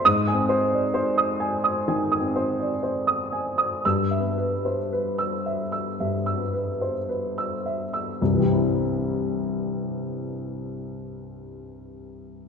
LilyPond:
<<
  \new Staff \with { instrumentName = "Upright piano" } { \time 4/4 \key e \phrygian \tempo 4 = 56 r16 aes''16 c''16 d''16 c''16 ees'''16 aes''16 ees'''16 aes''16 ees'''16 c''16 d''16 c''16 ees'''16 aes''16 ees'''16 | r16 e''16 b'16 c''16 b'16 e'''16 e''16 e'''16 e''16 e'''16 b'16 c''16 b'16 e'''16 e''16 e'''16 | r1 | }
  \new Staff \with { instrumentName = "Upright piano" } { \time 4/4 \key e \phrygian << { ees'''8 r2. r8 | e'''8 r2. r8 | <c, g, e g c' e'>1 | } \\ { \tuplet 3/2 { aes,8 c'4 } r4 \tuplet 3/2 { ees8 c'4 } r4 | \tuplet 3/2 { g,8 b4 } r4 \tuplet 3/2 { g,8 b4 } r4 | r1 | } >> }
>>